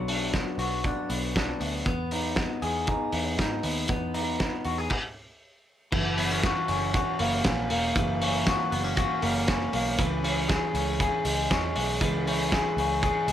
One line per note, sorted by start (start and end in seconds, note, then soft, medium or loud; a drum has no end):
0.00 0.43 B1 medium
0.00 1.86 F#3 medium
0.00 0.33 B3 medium
0.00 0.58 F#4 medium
0.08 0.83 D4 soft
0.08 open hi-hat medium
0.33 1.09 B3 medium
0.33 kick loud
0.33 snare medium
0.33 closed hi-hat medium
0.58 0.91 B1 medium
0.58 1.91 F#4 medium
0.58 open hi-hat medium
0.84 1.34 D4 medium
0.84 kick medium
0.84 closed hi-hat medium
1.09 1.53 B1 medium
1.09 1.60 B3 medium
1.09 open hi-hat medium
1.35 1.91 D4 medium
1.35 kick loud
1.35 snare loud
1.35 closed hi-hat medium
1.60 1.82 D2 medium
1.60 1.85 B3 medium
1.60 open hi-hat medium
1.86 2.46 E2 medium
1.86 2.36 B3 medium
1.86 kick medium
1.86 closed hi-hat medium
2.11 2.87 D#4 medium
2.11 open hi-hat medium
2.36 3.11 B3 medium
2.36 kick loud
2.36 snare medium
2.36 closed hi-hat medium
2.62 2.95 E2 medium
2.62 4.65 G#4 medium
2.62 open hi-hat medium
2.87 3.37 D#4 medium
2.87 kick medium
2.87 closed hi-hat medium
3.12 3.39 E2 medium
3.12 3.62 B3 medium
3.12 open hi-hat medium
3.38 3.60 G#2 medium
3.38 4.13 D#4 medium
3.38 kick loud
3.38 snare medium
3.38 closed hi-hat medium
3.63 3.86 D#2 medium
3.63 3.88 B3 medium
3.63 open hi-hat medium
3.88 4.50 E2 medium
3.88 4.38 B3 medium
3.88 kick medium
3.88 closed hi-hat medium
4.14 4.96 D#4 soft
4.14 open hi-hat medium
4.40 4.96 B3 medium
4.40 kick loud
4.40 snare medium
4.40 closed hi-hat medium
4.64 4.87 E2 medium
4.64 4.78 F#4 medium
4.64 open hi-hat medium
4.78 4.96 G#4 medium
4.90 kick medium
4.90 crash medium
5.92 6.53 F#1 loud
5.92 7.95 E3 medium
5.92 kick loud
5.92 crash medium
6.18 6.31 B3 medium
6.18 open hi-hat medium
6.31 6.67 C#4 soft
6.43 6.93 F#4 medium
6.43 kick loud
6.43 snare loud
6.43 hi-hat pedal medium
6.43 ride medium
6.68 7.01 F#1 medium
6.68 7.45 C#4 medium
6.68 open hi-hat medium
6.94 8.46 F#4 medium
6.94 kick loud
6.94 hi-hat pedal medium
6.94 ride medium
7.19 7.41 F#1 medium
7.19 7.69 A#3 medium
7.19 open hi-hat medium
7.44 7.67 A#1 medium
7.44 8.21 C#4 medium
7.44 kick loud
7.44 snare loud
7.44 hi-hat pedal medium
7.44 ride medium
7.70 7.92 E1 medium
7.70 9.21 A#3 medium
7.70 open hi-hat medium
7.96 8.56 F#1 loud
7.96 9.98 E3 medium
7.96 kick loud
7.96 hi-hat pedal medium
7.96 ride medium
8.22 8.71 C#4 medium
8.22 open hi-hat medium
8.47 8.95 F#4 medium
8.47 kick loud
8.47 snare loud
8.47 hi-hat pedal medium
8.47 ride medium
8.71 9.04 F#1 loud
8.71 8.84 B3 medium
8.71 open hi-hat medium
8.84 9.46 C#4 medium
8.96 10.03 F#4 medium
8.96 kick loud
8.96 hi-hat pedal medium
8.96 ride medium
9.22 9.66 F#1 loud
9.22 9.72 A#3 medium
9.22 open hi-hat medium
9.47 10.23 C#4 medium
9.47 kick loud
9.47 snare loud
9.47 hi-hat pedal medium
9.47 ride medium
9.73 9.95 B1 medium
9.73 10.03 A#3 medium
9.73 open hi-hat medium
9.99 10.59 C#2 loud
9.99 12.00 E3 medium
9.99 kick loud
9.99 hi-hat pedal medium
9.99 ride medium
10.24 10.73 C#4 medium
10.24 open hi-hat medium
10.48 10.99 G#4 medium
10.48 kick loud
10.48 snare medium
10.48 hi-hat pedal medium
10.48 ride medium
10.74 11.07 C#2 loud
10.74 11.49 C#4 medium
10.74 open hi-hat medium
11.00 12.51 G#4 medium
11.00 kick loud
11.00 hi-hat pedal medium
11.00 ride medium
11.25 11.47 C#2 medium
11.25 11.75 G#3 medium
11.25 open hi-hat medium
11.50 11.72 E2 loud
11.50 12.25 C#4 medium
11.50 kick loud
11.50 snare loud
11.50 hi-hat pedal medium
11.50 ride medium
11.76 11.98 B1 medium
11.76 13.27 G#3 medium
11.76 open hi-hat medium
12.01 12.61 C#2 loud
12.01 13.32 E3 medium
12.01 kick loud
12.01 hi-hat pedal medium
12.01 ride medium
12.26 12.77 C#4 medium
12.26 open hi-hat medium
12.52 13.02 G#4 medium
12.52 kick loud
12.52 snare loud
12.52 hi-hat pedal medium
12.52 ride medium
12.77 13.09 C#2 medium
12.77 13.32 C#4 medium
12.77 open hi-hat medium
13.03 13.32 G#4 medium
13.03 kick loud
13.03 hi-hat pedal medium
13.03 ride medium
13.28 13.32 C#2 loud
13.28 13.32 G#3 medium
13.28 open hi-hat medium